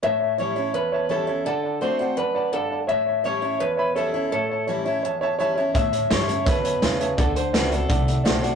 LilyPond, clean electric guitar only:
\new Staff \with { instrumentName = "Clean electric guitar" } { \time 4/4 \key a \mixolydian \tempo 4 = 168 e''4 cis''4 b'4 a'4 | a'4 c''4 b'4 a'8. r16 | e''4 cis''4 b'4 a'4 | a'4 r2. |
e''4 cis''4 b'2 | a'8 c''8 b'8 a'2 r8 | }